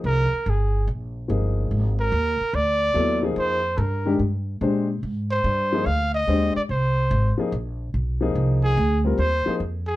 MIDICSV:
0, 0, Header, 1, 5, 480
1, 0, Start_track
1, 0, Tempo, 415512
1, 50, Time_signature, 4, 2, 24, 8
1, 11507, End_track
2, 0, Start_track
2, 0, Title_t, "Trumpet"
2, 0, Program_c, 0, 56
2, 64, Note_on_c, 0, 70, 99
2, 567, Note_on_c, 0, 68, 72
2, 584, Note_off_c, 0, 70, 0
2, 1028, Note_off_c, 0, 68, 0
2, 2309, Note_on_c, 0, 70, 97
2, 2943, Note_on_c, 0, 74, 111
2, 2960, Note_off_c, 0, 70, 0
2, 3740, Note_off_c, 0, 74, 0
2, 3910, Note_on_c, 0, 72, 93
2, 4335, Note_on_c, 0, 69, 45
2, 4352, Note_off_c, 0, 72, 0
2, 4374, Note_on_c, 0, 70, 65
2, 4391, Note_off_c, 0, 69, 0
2, 4852, Note_off_c, 0, 70, 0
2, 6127, Note_on_c, 0, 72, 88
2, 6768, Note_on_c, 0, 77, 97
2, 6785, Note_off_c, 0, 72, 0
2, 7088, Note_off_c, 0, 77, 0
2, 7095, Note_on_c, 0, 75, 100
2, 7541, Note_off_c, 0, 75, 0
2, 7581, Note_on_c, 0, 74, 77
2, 7650, Note_off_c, 0, 74, 0
2, 7745, Note_on_c, 0, 72, 85
2, 8496, Note_off_c, 0, 72, 0
2, 9976, Note_on_c, 0, 68, 95
2, 10423, Note_off_c, 0, 68, 0
2, 10612, Note_on_c, 0, 72, 101
2, 11059, Note_off_c, 0, 72, 0
2, 11401, Note_on_c, 0, 68, 81
2, 11507, Note_off_c, 0, 68, 0
2, 11507, End_track
3, 0, Start_track
3, 0, Title_t, "Grand piano"
3, 0, Program_c, 1, 0
3, 0, Note_on_c, 1, 53, 56
3, 0, Note_on_c, 1, 58, 52
3, 0, Note_on_c, 1, 63, 48
3, 0, Note_on_c, 1, 68, 63
3, 303, Note_off_c, 1, 53, 0
3, 306, Note_off_c, 1, 58, 0
3, 310, Note_off_c, 1, 63, 0
3, 315, Note_off_c, 1, 68, 0
3, 1481, Note_on_c, 1, 53, 51
3, 1487, Note_on_c, 1, 58, 50
3, 1497, Note_on_c, 1, 63, 47
3, 1500, Note_on_c, 1, 68, 60
3, 2224, Note_off_c, 1, 53, 0
3, 2227, Note_off_c, 1, 58, 0
3, 2232, Note_off_c, 1, 63, 0
3, 2234, Note_off_c, 1, 68, 0
3, 3397, Note_on_c, 1, 54, 61
3, 3406, Note_on_c, 1, 59, 56
3, 3412, Note_on_c, 1, 64, 57
3, 3419, Note_on_c, 1, 69, 65
3, 3695, Note_off_c, 1, 54, 0
3, 3699, Note_off_c, 1, 59, 0
3, 3703, Note_off_c, 1, 64, 0
3, 3706, Note_off_c, 1, 69, 0
3, 3729, Note_on_c, 1, 53, 65
3, 3729, Note_on_c, 1, 58, 52
3, 3737, Note_on_c, 1, 63, 58
3, 3747, Note_on_c, 1, 68, 77
3, 4147, Note_off_c, 1, 53, 0
3, 4147, Note_off_c, 1, 58, 0
3, 4151, Note_off_c, 1, 63, 0
3, 4156, Note_off_c, 1, 68, 0
3, 4684, Note_on_c, 1, 51, 59
3, 4693, Note_on_c, 1, 56, 59
3, 4699, Note_on_c, 1, 62, 62
3, 4703, Note_on_c, 1, 67, 75
3, 4830, Note_off_c, 1, 51, 0
3, 4834, Note_off_c, 1, 56, 0
3, 4838, Note_off_c, 1, 62, 0
3, 4839, Note_off_c, 1, 67, 0
3, 5327, Note_on_c, 1, 56, 62
3, 5332, Note_on_c, 1, 62, 55
3, 5342, Note_on_c, 1, 67, 51
3, 5347, Note_on_c, 1, 72, 66
3, 5620, Note_off_c, 1, 56, 0
3, 5623, Note_off_c, 1, 62, 0
3, 5627, Note_off_c, 1, 67, 0
3, 5630, Note_off_c, 1, 72, 0
3, 6613, Note_on_c, 1, 53, 65
3, 6616, Note_on_c, 1, 58, 59
3, 6624, Note_on_c, 1, 63, 62
3, 6634, Note_on_c, 1, 68, 75
3, 6755, Note_off_c, 1, 53, 0
3, 6756, Note_off_c, 1, 58, 0
3, 6760, Note_off_c, 1, 63, 0
3, 6765, Note_off_c, 1, 68, 0
3, 7247, Note_on_c, 1, 56, 61
3, 7258, Note_on_c, 1, 62, 59
3, 7261, Note_on_c, 1, 67, 59
3, 7267, Note_on_c, 1, 72, 70
3, 7540, Note_off_c, 1, 56, 0
3, 7546, Note_off_c, 1, 62, 0
3, 7548, Note_off_c, 1, 67, 0
3, 7550, Note_off_c, 1, 72, 0
3, 8521, Note_on_c, 1, 53, 66
3, 8531, Note_on_c, 1, 58, 57
3, 8538, Note_on_c, 1, 63, 61
3, 8544, Note_on_c, 1, 68, 72
3, 8669, Note_off_c, 1, 53, 0
3, 8674, Note_off_c, 1, 58, 0
3, 8678, Note_off_c, 1, 63, 0
3, 8681, Note_off_c, 1, 68, 0
3, 9481, Note_on_c, 1, 53, 65
3, 9487, Note_on_c, 1, 58, 56
3, 9496, Note_on_c, 1, 63, 67
3, 9503, Note_on_c, 1, 68, 71
3, 10094, Note_off_c, 1, 53, 0
3, 10097, Note_off_c, 1, 58, 0
3, 10101, Note_off_c, 1, 63, 0
3, 10105, Note_off_c, 1, 68, 0
3, 10445, Note_on_c, 1, 55, 56
3, 10451, Note_on_c, 1, 60, 54
3, 10461, Note_on_c, 1, 65, 55
3, 10470, Note_on_c, 1, 70, 67
3, 10591, Note_off_c, 1, 55, 0
3, 10595, Note_off_c, 1, 60, 0
3, 10600, Note_off_c, 1, 65, 0
3, 10604, Note_off_c, 1, 70, 0
3, 10926, Note_on_c, 1, 53, 65
3, 10935, Note_on_c, 1, 58, 57
3, 10939, Note_on_c, 1, 63, 60
3, 10947, Note_on_c, 1, 68, 72
3, 11072, Note_off_c, 1, 53, 0
3, 11077, Note_off_c, 1, 58, 0
3, 11079, Note_off_c, 1, 63, 0
3, 11083, Note_off_c, 1, 68, 0
3, 11507, End_track
4, 0, Start_track
4, 0, Title_t, "Upright bass"
4, 0, Program_c, 2, 32
4, 45, Note_on_c, 2, 36, 86
4, 348, Note_off_c, 2, 36, 0
4, 532, Note_on_c, 2, 31, 93
4, 996, Note_off_c, 2, 31, 0
4, 1010, Note_on_c, 2, 34, 88
4, 1475, Note_off_c, 2, 34, 0
4, 1496, Note_on_c, 2, 31, 93
4, 1959, Note_off_c, 2, 31, 0
4, 1974, Note_on_c, 2, 32, 79
4, 2438, Note_off_c, 2, 32, 0
4, 2448, Note_on_c, 2, 39, 95
4, 2750, Note_off_c, 2, 39, 0
4, 2927, Note_on_c, 2, 38, 87
4, 3394, Note_off_c, 2, 38, 0
4, 3405, Note_on_c, 2, 39, 92
4, 3873, Note_off_c, 2, 39, 0
4, 3881, Note_on_c, 2, 41, 86
4, 4352, Note_off_c, 2, 41, 0
4, 4362, Note_on_c, 2, 43, 101
4, 4832, Note_off_c, 2, 43, 0
4, 4843, Note_on_c, 2, 43, 82
4, 5313, Note_off_c, 2, 43, 0
4, 5325, Note_on_c, 2, 46, 85
4, 5793, Note_off_c, 2, 46, 0
4, 5808, Note_on_c, 2, 44, 80
4, 6275, Note_off_c, 2, 44, 0
4, 6285, Note_on_c, 2, 43, 95
4, 6754, Note_off_c, 2, 43, 0
4, 6767, Note_on_c, 2, 38, 88
4, 7235, Note_off_c, 2, 38, 0
4, 7248, Note_on_c, 2, 39, 86
4, 7551, Note_off_c, 2, 39, 0
4, 7730, Note_on_c, 2, 36, 82
4, 8196, Note_off_c, 2, 36, 0
4, 8210, Note_on_c, 2, 32, 100
4, 8512, Note_off_c, 2, 32, 0
4, 8690, Note_on_c, 2, 34, 90
4, 9157, Note_off_c, 2, 34, 0
4, 9171, Note_on_c, 2, 35, 89
4, 9638, Note_off_c, 2, 35, 0
4, 9649, Note_on_c, 2, 36, 87
4, 10117, Note_off_c, 2, 36, 0
4, 10134, Note_on_c, 2, 38, 99
4, 10599, Note_off_c, 2, 38, 0
4, 10608, Note_on_c, 2, 39, 88
4, 10911, Note_off_c, 2, 39, 0
4, 11090, Note_on_c, 2, 41, 83
4, 11507, Note_off_c, 2, 41, 0
4, 11507, End_track
5, 0, Start_track
5, 0, Title_t, "Muted upright bass strokes"
5, 2777, Note_on_c, 9, 29, 39
5, 2893, Note_off_c, 9, 29, 0
5, 7578, Note_on_c, 9, 29, 36
5, 7694, Note_off_c, 9, 29, 0
5, 8529, Note_on_c, 9, 29, 38
5, 8645, Note_off_c, 9, 29, 0
5, 10939, Note_on_c, 9, 29, 38
5, 11055, Note_off_c, 9, 29, 0
5, 11507, End_track
0, 0, End_of_file